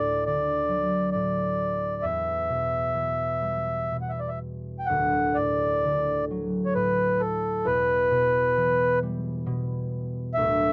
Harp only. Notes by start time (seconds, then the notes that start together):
Already playing: D2 A2
0.27 D3
0.69 F#3
1.15 A2
2.03 E2
2.50 B2
2.94 E3
3.42 G3
3.92 B2
4.89 D1 D2
5.38 A2
5.84 D3
6.31 F#3
6.75 A2
7.65 E1 E2
8.10 B2
8.57 E3
9.03 G3
9.46 B2
10.37 D1 D2